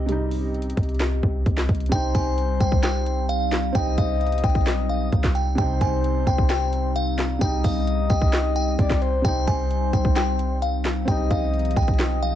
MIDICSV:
0, 0, Header, 1, 7, 480
1, 0, Start_track
1, 0, Key_signature, -3, "minor"
1, 0, Tempo, 458015
1, 90, Time_signature, 4, 2, 24, 8
1, 12944, End_track
2, 0, Start_track
2, 0, Title_t, "Synth bell"
2, 0, Program_c, 0, 98
2, 2011, Note_on_c, 0, 79, 107
2, 2225, Note_off_c, 0, 79, 0
2, 2251, Note_on_c, 0, 80, 86
2, 2701, Note_off_c, 0, 80, 0
2, 2730, Note_on_c, 0, 79, 75
2, 2945, Note_off_c, 0, 79, 0
2, 2968, Note_on_c, 0, 79, 97
2, 3420, Note_off_c, 0, 79, 0
2, 3449, Note_on_c, 0, 77, 82
2, 3900, Note_off_c, 0, 77, 0
2, 3931, Note_on_c, 0, 79, 108
2, 4145, Note_off_c, 0, 79, 0
2, 4169, Note_on_c, 0, 77, 78
2, 4621, Note_off_c, 0, 77, 0
2, 4653, Note_on_c, 0, 79, 84
2, 5103, Note_off_c, 0, 79, 0
2, 5129, Note_on_c, 0, 77, 85
2, 5581, Note_off_c, 0, 77, 0
2, 5606, Note_on_c, 0, 79, 80
2, 5822, Note_off_c, 0, 79, 0
2, 5851, Note_on_c, 0, 79, 102
2, 6065, Note_off_c, 0, 79, 0
2, 6093, Note_on_c, 0, 80, 82
2, 6543, Note_off_c, 0, 80, 0
2, 6572, Note_on_c, 0, 79, 79
2, 6786, Note_off_c, 0, 79, 0
2, 6810, Note_on_c, 0, 79, 93
2, 7261, Note_off_c, 0, 79, 0
2, 7291, Note_on_c, 0, 77, 89
2, 7742, Note_off_c, 0, 77, 0
2, 7768, Note_on_c, 0, 79, 101
2, 7983, Note_off_c, 0, 79, 0
2, 8013, Note_on_c, 0, 77, 81
2, 8463, Note_off_c, 0, 77, 0
2, 8486, Note_on_c, 0, 79, 80
2, 8939, Note_off_c, 0, 79, 0
2, 8968, Note_on_c, 0, 79, 81
2, 9647, Note_off_c, 0, 79, 0
2, 9691, Note_on_c, 0, 79, 113
2, 9905, Note_off_c, 0, 79, 0
2, 9930, Note_on_c, 0, 80, 83
2, 10381, Note_off_c, 0, 80, 0
2, 10409, Note_on_c, 0, 79, 73
2, 10624, Note_off_c, 0, 79, 0
2, 10649, Note_on_c, 0, 79, 95
2, 11101, Note_off_c, 0, 79, 0
2, 11132, Note_on_c, 0, 77, 81
2, 11582, Note_off_c, 0, 77, 0
2, 11612, Note_on_c, 0, 79, 103
2, 11826, Note_off_c, 0, 79, 0
2, 11849, Note_on_c, 0, 77, 79
2, 12301, Note_off_c, 0, 77, 0
2, 12334, Note_on_c, 0, 79, 86
2, 12783, Note_off_c, 0, 79, 0
2, 12812, Note_on_c, 0, 77, 85
2, 12944, Note_off_c, 0, 77, 0
2, 12944, End_track
3, 0, Start_track
3, 0, Title_t, "Soft synth lead"
3, 0, Program_c, 1, 80
3, 2010, Note_on_c, 1, 72, 107
3, 3408, Note_off_c, 1, 72, 0
3, 3932, Note_on_c, 1, 75, 115
3, 5329, Note_off_c, 1, 75, 0
3, 5851, Note_on_c, 1, 72, 108
3, 7249, Note_off_c, 1, 72, 0
3, 7767, Note_on_c, 1, 75, 88
3, 9167, Note_off_c, 1, 75, 0
3, 9209, Note_on_c, 1, 74, 89
3, 9437, Note_off_c, 1, 74, 0
3, 9449, Note_on_c, 1, 72, 88
3, 9677, Note_off_c, 1, 72, 0
3, 9689, Note_on_c, 1, 72, 101
3, 11087, Note_off_c, 1, 72, 0
3, 11612, Note_on_c, 1, 75, 113
3, 12944, Note_off_c, 1, 75, 0
3, 12944, End_track
4, 0, Start_track
4, 0, Title_t, "Analog synth pad"
4, 0, Program_c, 2, 89
4, 0, Note_on_c, 2, 60, 85
4, 0, Note_on_c, 2, 67, 76
4, 0, Note_on_c, 2, 75, 98
4, 1971, Note_off_c, 2, 60, 0
4, 1971, Note_off_c, 2, 75, 0
4, 1972, Note_off_c, 2, 67, 0
4, 2010, Note_on_c, 2, 63, 94
4, 2011, Note_on_c, 2, 55, 82
4, 2011, Note_on_c, 2, 60, 86
4, 5812, Note_off_c, 2, 55, 0
4, 5812, Note_off_c, 2, 60, 0
4, 5849, Note_on_c, 2, 55, 80
4, 5850, Note_on_c, 2, 60, 84
4, 9651, Note_off_c, 2, 55, 0
4, 9689, Note_on_c, 2, 55, 76
4, 11590, Note_off_c, 2, 55, 0
4, 11611, Note_on_c, 2, 53, 77
4, 12944, Note_off_c, 2, 53, 0
4, 12944, Note_off_c, 2, 60, 0
4, 12944, Note_off_c, 2, 63, 0
4, 12944, End_track
5, 0, Start_track
5, 0, Title_t, "Felt piano"
5, 0, Program_c, 3, 0
5, 0, Control_c, 3, 64, 127
5, 0, Note_on_c, 3, 48, 89
5, 0, Note_on_c, 3, 55, 68
5, 0, Note_on_c, 3, 63, 93
5, 64, Note_off_c, 3, 48, 0
5, 64, Note_on_c, 3, 48, 75
5, 95, Note_off_c, 3, 55, 0
5, 95, Note_on_c, 3, 55, 76
5, 125, Note_off_c, 3, 63, 0
5, 125, Note_on_c, 3, 63, 87
5, 1958, Note_off_c, 3, 48, 0
5, 1974, Note_off_c, 3, 55, 0
5, 1982, Note_on_c, 3, 48, 76
5, 1989, Note_off_c, 3, 63, 0
5, 2013, Note_on_c, 3, 55, 68
5, 2025, Control_c, 3, 64, 0
5, 2043, Note_on_c, 3, 63, 99
5, 2235, Control_c, 3, 64, 127
5, 3877, Note_off_c, 3, 48, 0
5, 3893, Note_off_c, 3, 55, 0
5, 3904, Note_on_c, 3, 60, 83
5, 3909, Note_off_c, 3, 63, 0
5, 3935, Note_on_c, 3, 55, 73
5, 3965, Note_on_c, 3, 63, 81
5, 5798, Note_off_c, 3, 60, 0
5, 5814, Note_off_c, 3, 55, 0
5, 5819, Note_on_c, 3, 48, 91
5, 5829, Note_off_c, 3, 63, 0
5, 5849, Note_on_c, 3, 55, 71
5, 5862, Control_c, 3, 64, 0
5, 5879, Note_on_c, 3, 63, 92
5, 6055, Control_c, 3, 64, 127
5, 7715, Note_off_c, 3, 48, 0
5, 7731, Note_off_c, 3, 55, 0
5, 7742, Note_on_c, 3, 48, 78
5, 7746, Note_off_c, 3, 63, 0
5, 7773, Note_on_c, 3, 55, 82
5, 7803, Note_on_c, 3, 63, 89
5, 9637, Note_off_c, 3, 48, 0
5, 9653, Note_off_c, 3, 55, 0
5, 9662, Note_on_c, 3, 48, 79
5, 9668, Note_off_c, 3, 63, 0
5, 9692, Note_on_c, 3, 55, 67
5, 9705, Control_c, 3, 64, 0
5, 9722, Note_on_c, 3, 63, 101
5, 9891, Control_c, 3, 64, 127
5, 11557, Note_off_c, 3, 48, 0
5, 11572, Note_off_c, 3, 55, 0
5, 11583, Note_on_c, 3, 60, 80
5, 11588, Note_off_c, 3, 63, 0
5, 11613, Note_on_c, 3, 55, 75
5, 11643, Note_on_c, 3, 63, 83
5, 12944, Note_off_c, 3, 55, 0
5, 12944, Note_off_c, 3, 60, 0
5, 12944, Note_off_c, 3, 63, 0
5, 12944, End_track
6, 0, Start_track
6, 0, Title_t, "808-style bass"
6, 0, Program_c, 4, 38
6, 0, Note_on_c, 4, 36, 103
6, 768, Note_off_c, 4, 36, 0
6, 810, Note_on_c, 4, 36, 104
6, 1271, Note_off_c, 4, 36, 0
6, 1291, Note_on_c, 4, 36, 106
6, 1521, Note_off_c, 4, 36, 0
6, 1532, Note_on_c, 4, 36, 106
6, 1761, Note_off_c, 4, 36, 0
6, 1771, Note_on_c, 4, 36, 105
6, 2001, Note_off_c, 4, 36, 0
6, 2010, Note_on_c, 4, 36, 113
6, 2240, Note_off_c, 4, 36, 0
6, 2251, Note_on_c, 4, 36, 106
6, 2711, Note_off_c, 4, 36, 0
6, 2730, Note_on_c, 4, 36, 103
6, 3888, Note_off_c, 4, 36, 0
6, 3930, Note_on_c, 4, 36, 111
6, 4160, Note_off_c, 4, 36, 0
6, 4170, Note_on_c, 4, 36, 106
6, 4631, Note_off_c, 4, 36, 0
6, 4649, Note_on_c, 4, 35, 103
6, 5341, Note_off_c, 4, 35, 0
6, 5371, Note_on_c, 4, 36, 106
6, 5831, Note_off_c, 4, 36, 0
6, 5850, Note_on_c, 4, 36, 105
6, 6080, Note_off_c, 4, 36, 0
6, 6090, Note_on_c, 4, 36, 106
6, 6551, Note_off_c, 4, 36, 0
6, 6570, Note_on_c, 4, 36, 109
6, 7728, Note_off_c, 4, 36, 0
6, 7770, Note_on_c, 4, 36, 109
6, 8000, Note_off_c, 4, 36, 0
6, 8010, Note_on_c, 4, 36, 109
6, 8471, Note_off_c, 4, 36, 0
6, 8490, Note_on_c, 4, 36, 105
6, 9181, Note_off_c, 4, 36, 0
6, 9210, Note_on_c, 4, 36, 105
6, 9671, Note_off_c, 4, 36, 0
6, 9690, Note_on_c, 4, 36, 111
6, 9920, Note_off_c, 4, 36, 0
6, 9930, Note_on_c, 4, 36, 106
6, 10391, Note_off_c, 4, 36, 0
6, 10410, Note_on_c, 4, 36, 107
6, 11568, Note_off_c, 4, 36, 0
6, 11610, Note_on_c, 4, 36, 109
6, 11840, Note_off_c, 4, 36, 0
6, 11850, Note_on_c, 4, 36, 108
6, 12311, Note_off_c, 4, 36, 0
6, 12329, Note_on_c, 4, 35, 106
6, 12944, Note_off_c, 4, 35, 0
6, 12944, End_track
7, 0, Start_track
7, 0, Title_t, "Drums"
7, 91, Note_on_c, 9, 42, 82
7, 195, Note_off_c, 9, 42, 0
7, 329, Note_on_c, 9, 46, 78
7, 433, Note_off_c, 9, 46, 0
7, 570, Note_on_c, 9, 42, 43
7, 651, Note_off_c, 9, 42, 0
7, 651, Note_on_c, 9, 42, 59
7, 730, Note_off_c, 9, 42, 0
7, 730, Note_on_c, 9, 42, 75
7, 810, Note_on_c, 9, 36, 98
7, 811, Note_off_c, 9, 42, 0
7, 811, Note_on_c, 9, 42, 63
7, 870, Note_off_c, 9, 42, 0
7, 870, Note_on_c, 9, 42, 54
7, 915, Note_off_c, 9, 36, 0
7, 931, Note_off_c, 9, 42, 0
7, 931, Note_on_c, 9, 42, 47
7, 990, Note_off_c, 9, 42, 0
7, 990, Note_on_c, 9, 42, 38
7, 1049, Note_on_c, 9, 38, 114
7, 1051, Note_off_c, 9, 42, 0
7, 1051, Note_on_c, 9, 42, 63
7, 1053, Note_on_c, 9, 39, 92
7, 1154, Note_off_c, 9, 38, 0
7, 1156, Note_off_c, 9, 42, 0
7, 1158, Note_off_c, 9, 39, 0
7, 1291, Note_on_c, 9, 36, 87
7, 1396, Note_off_c, 9, 36, 0
7, 1531, Note_on_c, 9, 36, 96
7, 1531, Note_on_c, 9, 42, 75
7, 1636, Note_off_c, 9, 36, 0
7, 1636, Note_off_c, 9, 42, 0
7, 1650, Note_on_c, 9, 38, 98
7, 1654, Note_on_c, 9, 39, 76
7, 1755, Note_off_c, 9, 38, 0
7, 1759, Note_off_c, 9, 39, 0
7, 1771, Note_on_c, 9, 36, 95
7, 1771, Note_on_c, 9, 42, 54
7, 1831, Note_off_c, 9, 42, 0
7, 1831, Note_on_c, 9, 42, 53
7, 1876, Note_off_c, 9, 36, 0
7, 1890, Note_off_c, 9, 42, 0
7, 1890, Note_on_c, 9, 42, 55
7, 1950, Note_off_c, 9, 42, 0
7, 1950, Note_on_c, 9, 42, 55
7, 2010, Note_off_c, 9, 42, 0
7, 2010, Note_on_c, 9, 36, 118
7, 2010, Note_on_c, 9, 42, 84
7, 2115, Note_off_c, 9, 36, 0
7, 2115, Note_off_c, 9, 42, 0
7, 2249, Note_on_c, 9, 42, 81
7, 2251, Note_on_c, 9, 36, 98
7, 2354, Note_off_c, 9, 42, 0
7, 2355, Note_off_c, 9, 36, 0
7, 2492, Note_on_c, 9, 42, 72
7, 2597, Note_off_c, 9, 42, 0
7, 2729, Note_on_c, 9, 42, 61
7, 2730, Note_on_c, 9, 36, 100
7, 2834, Note_off_c, 9, 42, 0
7, 2835, Note_off_c, 9, 36, 0
7, 2850, Note_on_c, 9, 36, 101
7, 2955, Note_off_c, 9, 36, 0
7, 2969, Note_on_c, 9, 38, 118
7, 2971, Note_on_c, 9, 42, 64
7, 2973, Note_on_c, 9, 39, 93
7, 3074, Note_off_c, 9, 38, 0
7, 3076, Note_off_c, 9, 42, 0
7, 3078, Note_off_c, 9, 39, 0
7, 3210, Note_on_c, 9, 42, 78
7, 3315, Note_off_c, 9, 42, 0
7, 3451, Note_on_c, 9, 42, 77
7, 3555, Note_off_c, 9, 42, 0
7, 3690, Note_on_c, 9, 38, 97
7, 3691, Note_on_c, 9, 42, 63
7, 3694, Note_on_c, 9, 39, 78
7, 3795, Note_off_c, 9, 38, 0
7, 3796, Note_off_c, 9, 42, 0
7, 3799, Note_off_c, 9, 39, 0
7, 3930, Note_on_c, 9, 36, 116
7, 3930, Note_on_c, 9, 42, 82
7, 4034, Note_off_c, 9, 36, 0
7, 4035, Note_off_c, 9, 42, 0
7, 4168, Note_on_c, 9, 42, 80
7, 4170, Note_on_c, 9, 36, 97
7, 4273, Note_off_c, 9, 42, 0
7, 4275, Note_off_c, 9, 36, 0
7, 4411, Note_on_c, 9, 42, 45
7, 4470, Note_off_c, 9, 42, 0
7, 4470, Note_on_c, 9, 42, 56
7, 4530, Note_off_c, 9, 42, 0
7, 4530, Note_on_c, 9, 42, 65
7, 4590, Note_off_c, 9, 42, 0
7, 4590, Note_on_c, 9, 42, 77
7, 4649, Note_on_c, 9, 36, 98
7, 4650, Note_off_c, 9, 42, 0
7, 4650, Note_on_c, 9, 42, 63
7, 4710, Note_off_c, 9, 42, 0
7, 4710, Note_on_c, 9, 42, 54
7, 4754, Note_off_c, 9, 36, 0
7, 4770, Note_off_c, 9, 42, 0
7, 4770, Note_on_c, 9, 36, 102
7, 4770, Note_on_c, 9, 42, 46
7, 4830, Note_off_c, 9, 42, 0
7, 4830, Note_on_c, 9, 42, 37
7, 4875, Note_off_c, 9, 36, 0
7, 4890, Note_on_c, 9, 38, 118
7, 4892, Note_off_c, 9, 42, 0
7, 4892, Note_on_c, 9, 42, 65
7, 4894, Note_on_c, 9, 39, 97
7, 4995, Note_off_c, 9, 38, 0
7, 4997, Note_off_c, 9, 42, 0
7, 4999, Note_off_c, 9, 39, 0
7, 5370, Note_on_c, 9, 42, 75
7, 5371, Note_on_c, 9, 36, 97
7, 5475, Note_off_c, 9, 42, 0
7, 5476, Note_off_c, 9, 36, 0
7, 5489, Note_on_c, 9, 36, 91
7, 5490, Note_on_c, 9, 38, 98
7, 5494, Note_on_c, 9, 39, 77
7, 5594, Note_off_c, 9, 36, 0
7, 5595, Note_off_c, 9, 38, 0
7, 5599, Note_off_c, 9, 39, 0
7, 5611, Note_on_c, 9, 42, 64
7, 5716, Note_off_c, 9, 42, 0
7, 5849, Note_on_c, 9, 42, 79
7, 5850, Note_on_c, 9, 36, 115
7, 5954, Note_off_c, 9, 42, 0
7, 5955, Note_off_c, 9, 36, 0
7, 6088, Note_on_c, 9, 42, 80
7, 6090, Note_on_c, 9, 36, 92
7, 6193, Note_off_c, 9, 42, 0
7, 6195, Note_off_c, 9, 36, 0
7, 6332, Note_on_c, 9, 42, 74
7, 6437, Note_off_c, 9, 42, 0
7, 6570, Note_on_c, 9, 36, 97
7, 6570, Note_on_c, 9, 42, 64
7, 6674, Note_off_c, 9, 36, 0
7, 6674, Note_off_c, 9, 42, 0
7, 6690, Note_on_c, 9, 36, 103
7, 6795, Note_off_c, 9, 36, 0
7, 6809, Note_on_c, 9, 38, 124
7, 6812, Note_on_c, 9, 42, 66
7, 6813, Note_on_c, 9, 39, 96
7, 6914, Note_off_c, 9, 38, 0
7, 6916, Note_off_c, 9, 42, 0
7, 6918, Note_off_c, 9, 39, 0
7, 7050, Note_on_c, 9, 42, 76
7, 7155, Note_off_c, 9, 42, 0
7, 7290, Note_on_c, 9, 42, 77
7, 7395, Note_off_c, 9, 42, 0
7, 7530, Note_on_c, 9, 38, 98
7, 7531, Note_on_c, 9, 42, 64
7, 7534, Note_on_c, 9, 39, 78
7, 7635, Note_off_c, 9, 38, 0
7, 7636, Note_off_c, 9, 42, 0
7, 7639, Note_off_c, 9, 39, 0
7, 7770, Note_on_c, 9, 36, 119
7, 7770, Note_on_c, 9, 42, 81
7, 7875, Note_off_c, 9, 36, 0
7, 7875, Note_off_c, 9, 42, 0
7, 8008, Note_on_c, 9, 46, 81
7, 8010, Note_on_c, 9, 36, 97
7, 8113, Note_off_c, 9, 46, 0
7, 8115, Note_off_c, 9, 36, 0
7, 8252, Note_on_c, 9, 42, 72
7, 8357, Note_off_c, 9, 42, 0
7, 8489, Note_on_c, 9, 36, 100
7, 8489, Note_on_c, 9, 42, 63
7, 8594, Note_off_c, 9, 36, 0
7, 8594, Note_off_c, 9, 42, 0
7, 8610, Note_on_c, 9, 36, 100
7, 8715, Note_off_c, 9, 36, 0
7, 8730, Note_on_c, 9, 38, 121
7, 8732, Note_on_c, 9, 42, 67
7, 8734, Note_on_c, 9, 39, 94
7, 8834, Note_off_c, 9, 38, 0
7, 8836, Note_off_c, 9, 42, 0
7, 8838, Note_off_c, 9, 39, 0
7, 9210, Note_on_c, 9, 42, 73
7, 9211, Note_on_c, 9, 36, 99
7, 9315, Note_off_c, 9, 36, 0
7, 9315, Note_off_c, 9, 42, 0
7, 9329, Note_on_c, 9, 36, 89
7, 9330, Note_on_c, 9, 38, 92
7, 9333, Note_on_c, 9, 39, 79
7, 9434, Note_off_c, 9, 36, 0
7, 9434, Note_off_c, 9, 38, 0
7, 9438, Note_off_c, 9, 39, 0
7, 9451, Note_on_c, 9, 42, 64
7, 9555, Note_off_c, 9, 42, 0
7, 9690, Note_on_c, 9, 36, 114
7, 9690, Note_on_c, 9, 42, 79
7, 9795, Note_off_c, 9, 36, 0
7, 9795, Note_off_c, 9, 42, 0
7, 9929, Note_on_c, 9, 42, 84
7, 9930, Note_on_c, 9, 36, 98
7, 10034, Note_off_c, 9, 42, 0
7, 10035, Note_off_c, 9, 36, 0
7, 10172, Note_on_c, 9, 42, 73
7, 10277, Note_off_c, 9, 42, 0
7, 10410, Note_on_c, 9, 36, 98
7, 10410, Note_on_c, 9, 42, 64
7, 10514, Note_off_c, 9, 36, 0
7, 10514, Note_off_c, 9, 42, 0
7, 10530, Note_on_c, 9, 36, 106
7, 10635, Note_off_c, 9, 36, 0
7, 10650, Note_on_c, 9, 38, 117
7, 10652, Note_on_c, 9, 42, 65
7, 10653, Note_on_c, 9, 39, 96
7, 10754, Note_off_c, 9, 38, 0
7, 10756, Note_off_c, 9, 42, 0
7, 10758, Note_off_c, 9, 39, 0
7, 10890, Note_on_c, 9, 42, 79
7, 10995, Note_off_c, 9, 42, 0
7, 11131, Note_on_c, 9, 42, 77
7, 11235, Note_off_c, 9, 42, 0
7, 11370, Note_on_c, 9, 38, 97
7, 11370, Note_on_c, 9, 42, 64
7, 11374, Note_on_c, 9, 39, 80
7, 11474, Note_off_c, 9, 38, 0
7, 11475, Note_off_c, 9, 42, 0
7, 11478, Note_off_c, 9, 39, 0
7, 11609, Note_on_c, 9, 42, 80
7, 11610, Note_on_c, 9, 36, 116
7, 11714, Note_off_c, 9, 36, 0
7, 11714, Note_off_c, 9, 42, 0
7, 11848, Note_on_c, 9, 42, 81
7, 11850, Note_on_c, 9, 36, 95
7, 11953, Note_off_c, 9, 42, 0
7, 11955, Note_off_c, 9, 36, 0
7, 12089, Note_on_c, 9, 42, 45
7, 12149, Note_off_c, 9, 42, 0
7, 12149, Note_on_c, 9, 42, 57
7, 12209, Note_off_c, 9, 42, 0
7, 12209, Note_on_c, 9, 42, 67
7, 12269, Note_off_c, 9, 42, 0
7, 12269, Note_on_c, 9, 42, 77
7, 12329, Note_off_c, 9, 42, 0
7, 12329, Note_on_c, 9, 36, 97
7, 12329, Note_on_c, 9, 42, 66
7, 12389, Note_off_c, 9, 42, 0
7, 12389, Note_on_c, 9, 42, 56
7, 12434, Note_off_c, 9, 36, 0
7, 12450, Note_off_c, 9, 42, 0
7, 12450, Note_on_c, 9, 36, 102
7, 12450, Note_on_c, 9, 42, 50
7, 12509, Note_off_c, 9, 42, 0
7, 12509, Note_on_c, 9, 42, 40
7, 12555, Note_off_c, 9, 36, 0
7, 12569, Note_on_c, 9, 38, 123
7, 12571, Note_off_c, 9, 42, 0
7, 12571, Note_on_c, 9, 42, 64
7, 12573, Note_on_c, 9, 39, 97
7, 12674, Note_off_c, 9, 38, 0
7, 12676, Note_off_c, 9, 42, 0
7, 12678, Note_off_c, 9, 39, 0
7, 12944, End_track
0, 0, End_of_file